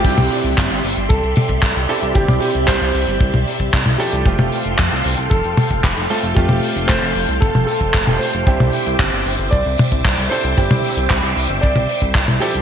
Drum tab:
CC |x---------------|----------------|----------------|----------------|
HH |xxoxxxoxxxoxxxox|xxoxxxoxxxoxxxox|xxoxxxoxxxoxxxox|xxoxxxoxxxoxxxox|
CP |----x-------x---|----x-------x---|----x-------x---|----x-------x---|
T1 |-o--------o-----|-o-------o---o--|-o--------o-----|-o-------o---o--|
BD |o---o---o--oo---|o---o---o--oo---|o---o---o--oo---|o---o---o--oo---|

CC |----------------|----------------|
HH |xxoxxxoxxxoxxxox|xxoxxxoxxxoxxxox|
CP |----x-------x---|----x-------x---|
T1 |-o--------o-----|-o-------o---o--|
BD |o---o---o--oo---|o---o---o--oo---|